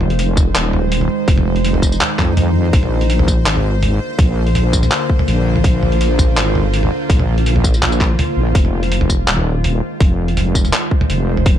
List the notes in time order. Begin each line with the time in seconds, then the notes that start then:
Already playing: F1 D#3 G#3 D#4 C5
0.01 mid tom
0.10 closed hi-hat
0.19 closed hi-hat
0.37 kick, mid tom, tambourine
0.55 D#1, clap, closed hi-hat
0.73 mid tom
0.92 closed hi-hat
1.01 mid tom
1.28 F1, kick, closed hi-hat
1.38 mid tom
1.56 closed hi-hat
1.65 closed hi-hat
1.74 mid tom
1.82 kick, tambourine
1.92 tambourine
2.01 clap, closed hi-hat, mid tom
2.19 F2, kick, clap, closed hi-hat
2.37 closed hi-hat, mid tom
2.73 A#1 D3 A#3 F4, kick, closed hi-hat
2.83 mid tom
3.01 closed hi-hat
3.10 closed hi-hat
3.19 mid tom
3.28 kick, tambourine
3.46 G#1, clap, closed hi-hat
3.56 mid tom
3.83 closed hi-hat, mid tom
4.19 A#1, kick, closed hi-hat, mid tom
4.47 closed hi-hat
4.55 closed hi-hat, mid tom
4.73 kick, tambourine
4.83 mid tom, tambourine
4.91 clap, closed hi-hat
5.10 kick
5.19 mid tom
5.28 A#1, closed hi-hat
5.56 mid tom
5.64 A#1, kick, closed hi-hat
5.83 mid tom
5.92 closed hi-hat
6.01 closed hi-hat
6.19 kick, mid tom, tambourine
6.37 G#1, clap, closed hi-hat
6.55 mid tom
6.74 closed hi-hat
6.83 mid tom
7.10 A#1, kick, closed hi-hat
7.19 mid tom
7.38 closed hi-hat
7.46 closed hi-hat
7.56 mid tom
7.64 kick, tambourine
7.74 tambourine
7.82 A#1, clap, closed hi-hat, mid tom
7.92 tambourine
8.00 kick, clap, closed hi-hat
8.19 closed hi-hat, mid tom
8.37 A#1
8.55 F1 D#3 G#3 C5, kick, closed hi-hat
8.65 mid tom
8.83 closed hi-hat
8.92 closed hi-hat
9.01 mid tom
9.10 kick, tambourine
9.28 D#1, clap, closed hi-hat
9.37 mid tom
9.64 closed hi-hat, mid tom
10.00 F1, kick, closed hi-hat, mid tom
10.28 closed hi-hat
10.37 closed hi-hat, mid tom
10.55 kick, tambourine
10.65 mid tom, tambourine
10.73 clap, closed hi-hat
10.91 kick
11.01 mid tom
11.10 F1, closed hi-hat
11.37 mid tom
11.46 F1, kick, closed hi-hat